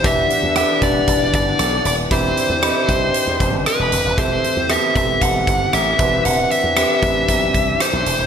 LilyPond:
<<
  \new Staff \with { instrumentName = "Lead electric guitar" } { \time 4/4 \key c \lydian \tempo 4 = 116 e''4 e''8 d''4 d''4 d''8 | c''2. b'4 | c''4 e''8 e''8 fis''4 e''4 | fis''8 e''2~ e''8 c''4 | }
  \new Staff \with { instrumentName = "Grand piano" } { \time 4/4 \key c \lydian <d' g' b' e''>4 <d' g' b' fis''>4.~ <d' g' b' fis''>16 r4 r16 | <c' g' e'' b''>4 <c' g' dis'' e'' b''>4.~ <c' g' dis'' e'' b''>16 r4 r16 | <c' g' a' e''>4 <b c' g' a' e''>4.~ <b c' g' a' e''>16 r8. <c' g' b' e''>8~ | <c' g' b' e''>4 <c' g' b' e''>4.~ <c' g' b' e''>16 r4 r16 | }
  \new Staff \with { instrumentName = "Grand piano" } { \clef bass \time 4/4 \key c \lydian e4. r2 r8 | e4. r2 r8 | e4. r2 e8~ | e4 r2. | }
  \new Staff \with { instrumentName = "Harmonium" } { \time 4/4 \key c \lydian <g' fis''>1~ | <g' fis''>1 | c'2.~ c'8 g'8~ | g'1 | }
  \new Staff \with { instrumentName = "Harmonium" } { \time 4/4 \key c \lydian <e b d'>1 | <e c' d'>1 | a2.~ a8 <e d'>8~ | <e d'>1 | }
  \new Staff \with { instrumentName = "Slap bass" } { \clef bass \time 4/4 \key c \lydian e,,8 r16 e,8 r16 e,,8 e,,8 g,,8 b,,8 dis,,8 | e,,8 r16 e,8 r16 c,8 r16 e,16 e,,16 g,,16 r16 e,,16 e,,16 dis,,16 | e,,8 r16 e,8 r16 e,,8 e,,8 g,,8 a,,8 e,,8 | e,,8 r16 e,8 r16 a,,8 b,,8 c,8 r16 b,,16 e,,16 dis,,16 | }
  \new DrumStaff \with { instrumentName = "Drums" } \drummode { \time 4/4 <hh bd>8 hh8 <hh ss>8 <hh bd>8 <hh bd>8 <hh bd>8 <hh ss>8 hh8 | <hh bd>8 hh8 <hh ss>8 <hh bd>8 hh8 <hh bd>8 <hh ss>8 hh8 | <hh bd>8 hh8 <hh ss>8 <hh bd>8 <hh bd>8 <hh bd>8 <hh ss>8 <hh bd>8 | hh8 hh8 <hh ss>8 <hh bd>8 <hh bd>8 <hh bd>8 <hh ss>8 hh8 | }
>>